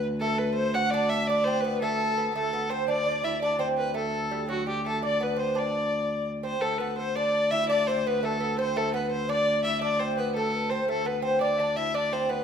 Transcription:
Already playing: D2
0.20 A3 A4
0.38 B4
0.54 C5
0.74 F#4 F#5
0.90 D4 D5
0.95 D5
1.09 E5
1.27 D4 D5
1.44 C4 C5
1.61 B3 B4
1.65 B4
1.81 A3 A4
2.17 B3
2.34 D2 A3 A4
2.53 B3
2.69 C4 C5
2.88 D4 D5
3.06 D4 D5
3.24 E4 E5
3.42 D4 D5
3.55 D5
3.59 C4 C5
3.77 B4
3.94 A3 A4
4.31 G3
4.49 F#3 F#4
4.67 G3 G4
4.86 A3 A4
5.03 D4 D5
5.20 B3 B4
5.36 C4 C5
5.55 D4 D5
6.43 C4 C5
6.61 D2 A3 A4
6.78 B3 B4
6.98 C5
7.15 D4 D5
7.51 E4 E5
7.65 D5 E5
7.70 D4 D5
7.87 C4 C5
8.05 B3 B4
8.23 A3 A4
8.40 B3
8.57 C4 C5
8.75 A3 A4
8.94 B3 B4
9.11 C5
9.29 D4 D5
9.64 E4 E5
9.81 D4 D5
9.99 C4 C5
10.17 B3 B4
10.35 A3 A4
10.54 B4
10.70 C4 C5
10.88 D2 A3 A4
11.05 B3 B4
11.22 C4 C5
11.41 D4 D5
11.55 D5 E5
11.60 D4
11.76 E4 E5
11.94 D4 D5
12.13 C4 C5
12.29 B3 B4

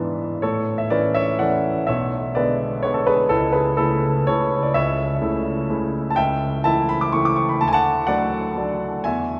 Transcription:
Already playing: G#2 E3 B3 D4 B4 E5
0.42 A2 A4 C#5
0.78 E5
0.90 E3 A3 C#4 B4 D5
1.15 C#5 E5
1.39 E3 A3 C#4 D5 F#5
1.87 B1 C#5 E5
2.35 D3 G#3 B3 B4 D5
2.83 D3 G#3 B3 C#5
2.94 A4
3.07 G#4 B4
3.29 C#2 E4 A4
3.53 G#4 B4
3.77 C#3 A3 E4 A4
4.27 C#3 A3 E4 A4 C#5
4.63 D5
4.74 C#2 C#5 E5
5.21 C#3 A3 E4
5.69 C#3 A3 E4
6.10 A5
6.16 C#2 E5 G5
6.64 E3 A3 E4 E5 A5
6.89 B5
7.01 D6
7.13 E3 A3 E4 C#6
7.25 D6
7.36 C#6
7.49 B5
7.61 D2 A5
7.68 G#5
7.73 F#5 A5
8.07 F#3 A3 D4 D5 F#5
8.57 F#3 A3 D4
9.04 E2 E5 G#5

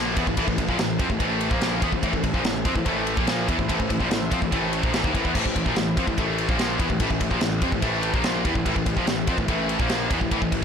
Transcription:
Already playing: A#1 A#2 F3 A#3 E4 A4 C5
0.17 E2 E3 B3, kick, ride
0.27 A1 A2 E3, kick
0.37 A1 A2 E3, kick, ride
0.48 A1 A2 E3, kick
0.58 A1 A2 E3, kick, ride
0.69 A#1 A#2 F3, kick
0.79 A1 A2 E3, snare, ride
0.99 F2 F3 C4, kick, ride
1.10 A1 A2 E3, kick
1.20 A1 A2 E3 A3, kick, ride
1.41 ride
1.51 A#1 A#2 F3 A#3, kick
1.61 snare, ride
1.82 E2 E3 B3, kick, ride
1.92 A1 A2 E3, kick
2.03 A1 A2 E3, kick, ride
2.13 A1 A2 E3, kick
2.23 A1 A2 E3, kick, ride
2.34 A#1 A#2 F3, kick
2.44 A1 A2 E3, snare, ride
2.65 F2 F3 C4, kick, ride
2.75 A1 A2 E3, kick
2.85 A1 A2 E3 A3, kick, ride
3.07 ride
3.16 A#1 A#2 F3 A#3, kick
3.27 snare, ride
3.48 E2 E3 B3, kick, ride
3.58 A1 A2 E3, kick
3.68 A1 A2 E3, kick, ride
3.80 A1 A2 E3, kick
3.89 A1 A2 E3, kick, ride
4.00 A#1 A#2 F3, kick
4.10 A1 A2 E3, snare, ride
4.31 F2 F3 C4, kick, ride
4.42 A1 A2 E3, kick
4.52 A1 A2 E3 A3, kick, ride
4.73 ride
4.83 A#1 A#2 F3, kick
4.94 A1 A2 E3, snare, ride
5.04 D#2 D#3 A#3, kick
5.14 A1 A2 E3, kick, ride
5.25 E2 E3 B3, kick
5.34 A1 A2 E3 G4, kick, crash
5.45 A1 A2 E3, kick
5.56 A1 A2 E3, kick, ride
5.66 A#1 A#2 F3, kick
5.76 A1 A2 E3, snare, ride
5.97 F2 F3 C4, kick, ride
6.07 A1 A2 E3, kick
6.18 A1 A2 E3 A3, kick, ride
6.38 ride
6.49 A#1 A#2 F3 A#3, kick
6.59 snare, ride
6.79 E2 E3 B3, kick, ride
6.90 A1 A2 E3, kick
7.00 A1 A2 E3, kick, ride
7.10 A1 A2 E3, kick
7.20 A1 A2 E3, kick, ride
7.31 A#1 A#2 F3, kick
7.41 A1 A2 E3, snare, ride
7.62 F2 F3 C4, kick, ride
7.72 A1 A2 E3, kick
7.82 A1 A2 E3 A3, kick, ride
8.03 ride
8.14 A#1 A#2 F3 A#3, kick
8.24 snare, ride
8.45 E2 E3 B3, kick, ride
8.55 A1 A2 E3, kick
8.65 A1 A2 E3, kick, ride
8.76 A1 A2 E3, kick
8.86 A1 A2 E3, kick, ride
8.96 A#1 A#2 F3, kick
9.07 A1 A2 E3, snare, ride
9.27 F2 F3 C4, kick, ride
9.38 A1 A2 E3, kick
9.48 A1 A2 E3 A3, kick, ride
9.69 ride
9.80 A#1 A#2 F3 A#3, kick
9.89 snare, ride
10.11 E2 E3 B3, kick, ride
10.21 A1 A2 E3, kick
10.31 A1 A2 E3, kick, ride
10.42 A1 A2 E3, kick
10.52 A1 A2 E3, kick, ride

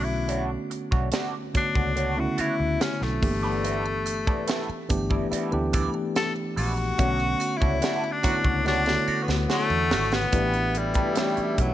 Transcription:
Already playing: B1 D3 A3 B3 C#4 F#4
0.04 E4
0.08 muted clean electric guitar stroke
0.28 A3 D4 F#4 C#5, closed hi-hat
0.71 muted clean electric guitar stroke, closed hi-hat
0.91 B1 A3 D4 F#4 C#5, kick
1.12 A3 D4 F#4 D5, snare, closed hi-hat
1.54 D3 A3 B3 D4 F#4 C#5, muted clean electric guitar stroke, muted fingered electric bass stroke, kick, closed hi-hat
1.75 C#2 A3 D4 F#4 C#5, kick
1.96 A3 D4 F#4 C#5, closed hi-hat
2.16 C#3 A3 B3 C#4 E4 F#4, muted clean electric guitar stroke
2.23 D3
2.38 A3 D4 E4 F#4 C#5, muted fingered electric bass stroke, closed hi-hat
2.59 D2, muted clean electric guitar stroke
2.80 C#4, muted clean electric guitar stroke, snare, closed hi-hat
3.01 B1 A3, muted clean electric guitar stroke, snare
3.21 G1 E3 A3 A#3 D4 G4, kick, open hi-hat
3.29 B3
3.43 B3 E4 A4 D5
3.64 B3 E4 A4 D5, closed hi-hat, muted triangle
3.86 muted triangle
4.06 muted clean electric guitar stroke, closed hi-hat, triangle
4.27 B3 E4 A4 D5, kick, muted triangle
4.47 B3 E4 A4 E5, snare, closed hi-hat, muted triangle
4.69 muted fingered electric bass stroke, muted triangle
4.89 G1 E3 A3 B3 D4 G4, muted clean electric guitar stroke, kick, closed hi-hat, triangle
5.10 B3 E4 A4 D5, kick, muted triangle
5.31 B3 E4 A4 D5, muted fingered electric bass stroke, closed hi-hat, muted triangle
5.52 D2 E3 A3 B3 D4 G4, muted clean electric guitar stroke, muted triangle
5.73 B3 E4 A4 D5, kick, closed hi-hat, triangle
5.94 muted clean electric guitar stroke, muted triangle
6.15 A4, muted clean electric guitar stroke, snare, closed hi-hat, muted triangle
6.36 muted triangle
6.56 A#1 B3 E4 F#4 A4 D5, open hi-hat, triangle
6.77 muted clean electric guitar stroke, muted triangle
6.98 B1 D3 A3 B3 C#4 D4 F#4 C#5, kick, closed hi-hat, muted triangle
7.20 muted triangle
7.40 muted clean electric guitar stroke, closed hi-hat, triangle
7.57 E4 C#5
7.61 C#2 A3 D4 F#4, kick, muted triangle
7.82 D3 F#3 A3 C#4 D4 F#4 D5, snare, closed hi-hat, muted triangle
8.04 muted triangle
8.12 D4
8.23 D3 F#3 A3 B3 C#4 E4 F#4 C#5, muted clean electric guitar stroke, muted fingered electric bass stroke, kick, closed hi-hat, triangle
8.44 C#2 A3 D4 F#4 C#5, kick, muted triangle
8.65 D3 F#3 A3 C#4 D4 F#4 C#5, snare, muted triangle
8.86 D3 A3 B3 F#4 C#5, muted clean electric guitar stroke, snare, muted triangle
9.07 A3 D4 F#4 C#5, muted fingered electric bass stroke, triangle
9.23 B3
9.28 D2, snare, muted triangle
9.49 D3 F#3 A3 C#4 F#4, muted clean electric guitar stroke, snare, muted triangle
9.70 E2, muted triangle
9.90 G#1 A3 D4 F#4 C#5, snare, triangle
10.11 B3, muted clean electric guitar stroke, snare, muted triangle
10.32 A1 B2 E3 A3 B3 D4 E4 G4 B4, kick, closed hi-hat
10.53 closed hi-hat
10.74 G3, muted clean electric guitar stroke, closed hi-hat
10.94 A3 D4 G4 B4, kick, closed hi-hat
11.15 E3 A3 B3 C#4 D4 G4 C#5 G5, snare, closed hi-hat
11.23 D4
11.37 muted fingered electric bass stroke, closed hi-hat
11.58 B1 F#3, muted clean electric guitar stroke, kick, closed hi-hat

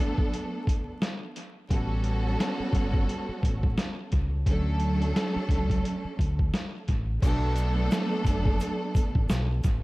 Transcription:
Already playing: F#3 A3 B3 D4 A4
0.18 kick
0.34 closed hi-hat
0.67 kick, closed hi-hat
1.02 snare, closed hi-hat
1.36 closed hi-hat
1.69 A1 G3 B3 C#4 F#4 A4, kick, closed hi-hat
2.04 closed hi-hat
2.40 snare, closed hi-hat
2.60 muted fingered electric bass stroke
2.73 G1, kick, closed hi-hat
2.94 kick
3.09 closed hi-hat
3.29 muted fingered electric bass stroke
3.43 A1, kick, closed hi-hat
3.63 kick
3.78 snare, closed hi-hat
4.12 C#2, kick, closed hi-hat
4.45 D2 F#3 A3 C#4 D4 A4, kick, closed hi-hat
4.80 closed hi-hat
5.02 closed hi-hat
5.16 snare, closed hi-hat
5.36 muted fingered electric bass stroke
5.49 C#2, kick, closed hi-hat
5.70 kick, closed hi-hat
5.85 closed hi-hat
6.05 muted fingered electric bass stroke
6.19 D2, kick, closed hi-hat
6.39 kick
6.54 snare, closed hi-hat
6.88 A1, kick, closed hi-hat
7.21 B1 F#3 A3 B3 D4 A4, kick, closed hi-hat, crash, shaker
7.56 closed hi-hat, shaker
7.91 snare, closed hi-hat, shaker
8.25 F#1, kick, closed hi-hat, shaker
8.46 kick
8.60 closed hi-hat, shaker
8.95 kick, closed hi-hat, shaker
9.15 A1, kick
9.29 B1, snare, closed hi-hat, shaker
9.64 A1, kick, closed hi-hat, shaker

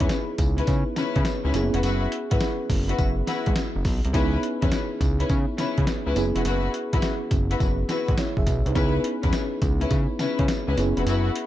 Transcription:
Already playing: B3 D#4 E4 G#4
0.00 E2 C#4 E4 B4, kick, closed hi-hat
0.09 snare, closed hi-hat, tambourine
0.38 C#2, kick, closed hi-hat, tambourine
0.58 C#4 E4 B4, closed hi-hat
0.67 C#3, kick, closed hi-hat, tambourine
0.96 C#3 C#4 E4 B4, snare, closed hi-hat, tambourine
1.16 C#3, kick, closed hi-hat
1.25 snare, closed hi-hat, tambourine
1.44 C#2 C#4 E4 B4
1.54 F#1 A#3 C#4 E4 G#4, closed hi-hat, tambourine
1.60 B3
1.73 F1 E4 F#4 B4, closed hi-hat
1.83 F#1 E4 F#4 B4, closed hi-hat, tambourine
2.12 closed hi-hat
2.31 G#1 E4 F#4 B4, kick, closed hi-hat
2.40 snare, closed hi-hat, tambourine
2.70 F#1, kick, open hi-hat, tambourine
2.89 E4 F#4 B4, closed hi-hat
2.98 F#1, kick, closed hi-hat, tambourine
3.27 E4 F#4 B4, snare, closed hi-hat, tambourine
3.46 G#1, kick, closed hi-hat
3.56 snare, closed hi-hat, tambourine
3.76 F#1
3.85 B1, kick, open hi-hat, tambourine
4.05 C2, closed hi-hat
4.13 C#2 B3 C#4 D#4 E4 G#4 B4, kick, closed hi-hat, tambourine
4.43 closed hi-hat
4.62 E2 C#4 E4 B4, kick, closed hi-hat
4.72 snare, closed hi-hat, tambourine
5.01 C#2, kick, closed hi-hat, tambourine
5.20 C#4 E4 B4, closed hi-hat
5.29 C#3, kick, closed hi-hat, tambourine
5.58 C#3 C#4 E4 B4, snare, closed hi-hat, tambourine
5.78 C#3, kick, closed hi-hat
5.87 snare, closed hi-hat, tambourine
6.06 C#2 C#4 E4 B4
6.15 F#1 B3 C#4 E4 G#4, closed hi-hat, tambourine
6.35 F1 E4 F#4 B4, closed hi-hat
6.45 F#1 E4 F#4 B4, closed hi-hat, tambourine
6.74 closed hi-hat
6.93 G#1 E4 F#4 B4, kick, closed hi-hat
7.02 snare, closed hi-hat, tambourine
7.31 F#1, kick, closed hi-hat, tambourine
7.50 E4 F#4 B4, closed hi-hat
7.60 F#1, kick, closed hi-hat, tambourine
7.89 E4 F#4 B4, snare, closed hi-hat, tambourine
8.08 G#1, kick, closed hi-hat
8.18 E4 C#5, snare, closed hi-hat, tambourine
8.37 F#1 G#4 E5, kick
8.47 B1, kick, closed hi-hat, tambourine
8.66 C2 D#4 B4, closed hi-hat
8.75 C#2 B3 C#4 D#4 E4 G#4 B4, kick, closed hi-hat, tambourine
9.04 closed hi-hat
9.23 E2 C#4 E4 B4, kick, closed hi-hat
9.33 snare, closed hi-hat, tambourine
9.62 C#2, kick, closed hi-hat, tambourine
9.81 C#4 E4 B4, closed hi-hat
9.90 C#3, kick, closed hi-hat, tambourine
10.19 C#3 C#4 E4 B4, snare, closed hi-hat, tambourine
10.39 C#3, kick, closed hi-hat
10.48 snare, closed hi-hat, tambourine
10.68 C#2 C#4 E4 B4
10.77 F#1 B3 C#4 E4 G#4, closed hi-hat, tambourine
10.97 F1 E4 F#4 B4, closed hi-hat
11.06 F#1 E4 F#4 B4, closed hi-hat, tambourine
11.36 closed hi-hat

